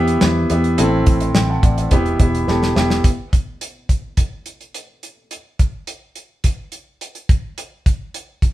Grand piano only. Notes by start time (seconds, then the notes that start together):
Already playing: B2 B3 E4 G4 E5
0.21 B3 E4 G4 E5
0.50 B3 E4 G4 E5
0.78 A2 E3 C4 E4 A4 E5
1.21 C5 E5
1.35 E5 G5
1.50 F#5 A5
1.63 D5 F#5
1.78 C5 E5
1.92 B2 B3 E4 G4 E5
2.20 B3 E4 G4 E5
2.48 B3 E4 G4 A4 B5
2.76 B3 E4 G4 E5 G5